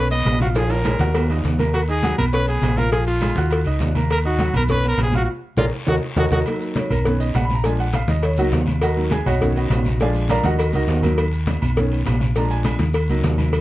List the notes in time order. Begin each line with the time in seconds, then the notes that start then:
Already playing: B1
0.11 B3 B4 D#5 B5, high conga, low agogo, maracas
0.25 A#1, cowbell, high conga, low timbale, low agogo, short guiro, maracas
0.40 F4 F#4 F5 F6, high conga, short guiro, maracas
0.55 F3 F4 G#4 F5, cowbell, high conga, high timbale, low agogo, long guiro, maracas
0.69 A#4, high conga, high timbale, low agogo, maracas
0.84 G#3 G#4 G#5, cowbell, high conga, high timbale, low agogo, short guiro, maracas
0.99 D#2 F#4 F#5 F#6, cowbell, high conga, low timbale, short guiro, maracas
1.14 cowbell, high conga, low timbale, low agogo, long guiro, maracas
1.29 D#4 D#5 D#6, high conga, low timbale, low agogo
1.44 D#2, cowbell, high conga, low timbale, short guiro, maracas
1.59 A#3 A#4 A#5, high conga, low timbale, low agogo, short guiro, maracas
1.74 F#4, cowbell, high conga, low agogo, long guiro, maracas
1.88 D#4 G#4 D#5 D#6, high conga, maracas
2.03 F#3 F#4 F#5, cowbell, high conga, low timbale, low agogo, short guiro, maracas
2.18 B1 B3 A#4 B4 B5, high conga, low conga, low agogo, short guiro
2.33 C#4 B4 C#5 C#6, cowbell, high conga, long guiro, maracas
2.47 B3 G#4 B4 B5, high conga, low agogo, maracas
2.62 A#1, cowbell, high conga, low timbale, low agogo, short guiro, maracas
2.77 F4 A#4 F5 F6, high conga, short guiro, maracas
2.91 F3 F4 G#4 F5, cowbell, high conga, low agogo, long guiro, maracas
3.07 F4, high conga, low agogo
3.21 G#3 G#4 G#5, cowbell, high conga, low timbale, low agogo, short guiro, maracas
3.36 D#2 F#4 F#5 F#6, cowbell, high conga, short guiro, maracas
3.50 cowbell, high conga, low agogo, long guiro, maracas
3.65 C#2 D#4 D#5 D#6, high conga, low agogo
3.80 D#2, cowbell, high conga, low timbale, short guiro, maracas
3.95 A#3 A#4 A#5, high conga, low agogo, short guiro, maracas
4.10 A#4, cowbell, high conga, low agogo, long guiro, maracas
4.24 D#4 F#4 D#5 D#6, high conga
4.39 F#3 F#4 F#5, cowbell, high conga, low timbale, low agogo, short guiro, maracas
4.54 B1 B3 A#4 B4 B5, high conga, low conga, low agogo, short guiro, maracas
4.68 C#4 B4 C#5 C#6, cowbell, high conga, low conga, long guiro, maracas
4.83 B3 B4 B5, high conga, low agogo, maracas
4.88 A#4
4.98 A#1, cowbell, high conga, low timbale, low agogo, short guiro, maracas
5.03 G#4
5.13 F4 F5 F6, high conga, short guiro, maracas
5.17 F#4
5.25 F#4
5.57 A#1 F4 G#4 A#4 D5, cowbell, high conga, high timbale, long guiro, maracas
5.87 D#2 F#4 A#4 D#5, cowbell, high conga, high timbale, long guiro, maracas
6.16 D#2 F#4 A#4 D#5, cowbell, high conga, high timbale, long guiro, maracas
6.31 D#2 F#4 A#4 D#5, cowbell, high conga, high timbale, long guiro, maracas
6.46 F#3 A#3 D#4, cowbell, high conga, low agogo, long guiro, maracas
6.61 high conga, maracas
6.76 C#5, cowbell, high conga, low timbale, low agogo, short guiro, maracas
6.90 B1 A#4, high conga, low conga, low agogo, short guiro, maracas
7.05 D#3 B3 C#4 B4, cowbell, high conga, low conga, long guiro, maracas
7.20 D#5, high conga, low agogo, maracas
7.34 A#1 F#5, cowbell, high conga, low timbale, low agogo, short guiro, maracas
7.45 B5
7.50 high conga, short guiro, maracas
7.55 A#5
7.64 F3 G#3 D4 G#5, cowbell, high conga, low agogo, long guiro, maracas
7.78 F#5, high conga, low agogo
7.93 F5, cowbell, high conga, low timbale, low agogo, short guiro, maracas
8.08 D#2 D#5, cowbell, high conga, short guiro, maracas
8.23 C#5, cowbell, high conga, low agogo, long guiro, maracas
8.37 C#2 F#3 A#3 D#4 F#4, high conga, low agogo, maracas
8.52 D#2, cowbell, high conga, low timbale, short guiro, maracas
8.66 high conga, low agogo, short guiro, maracas
8.81 F#4 A#4 D#5 F#5, cowbell, high conga, low agogo, long guiro, maracas
8.96 F#3 A#3 D#4, high conga
9.11 G#4 G#5, cowbell, high conga, low timbale, low agogo, short guiro, maracas
9.26 B1 F#4 C#5 D#5 F#5, high conga, low conga, low agogo, short guiro, maracas
9.41 D#3 B3 C#4, cowbell, high conga, low conga, long guiro, maracas
9.56 D#4 F#4 B4 D#5, high conga, low agogo
9.70 A#1, cowbell, high conga, low timbale, low agogo, short guiro, maracas
9.85 high conga, short guiro, maracas
10.00 F3 G#3 D4 G#4 D5 F5 G#5, cowbell, high conga, low agogo, long guiro, maracas
10.15 high conga, low agogo, maracas
10.29 A#4 D5 F5 A#5, cowbell, high conga, low timbale, low agogo, short guiro, maracas
10.44 D#2 F#4 A#4 D#5 F#5, cowbell, high conga, short guiro, maracas
10.58 cowbell, high conga, low agogo, long guiro, maracas
10.73 C#2 D#4 F#4 A#4 D#5, high conga, low agogo, maracas
10.88 D#2, cowbell, low timbale, short guiro, maracas
11.02 F#3 A#3 D#4, low conga, low agogo, short guiro, maracas
11.18 cowbell, high conga, low agogo, long guiro, maracas
11.33 high conga, maracas
11.47 cowbell, high conga, low timbale, low agogo, short guiro, maracas
11.62 B1, high conga, low conga, low agogo, short guiro, maracas
11.76 D#3 B3 C#4, cowbell, high conga, low conga, long guiro, maracas
11.91 high conga, low agogo
12.06 A#1, cowbell, high conga, low timbale, low agogo, short guiro, maracas
12.20 high conga, short guiro, maracas
12.35 F3 G#3 D4 A#5, cowbell, high conga, low agogo, long guiro, maracas
12.49 G#5, high conga, low agogo, maracas
12.64 cowbell, high conga, low timbale, low agogo, short guiro, maracas
12.79 D#2, cowbell, high conga, short guiro, maracas
12.94 cowbell, high conga, low agogo, long guiro, maracas
13.09 C#2 F#3 A#3 D#4, high conga, low agogo, maracas
13.23 D#2, cowbell, high conga, low timbale, short guiro, maracas
13.38 high conga, low agogo, short guiro, maracas
13.53 cowbell, high conga, low agogo, long guiro, maracas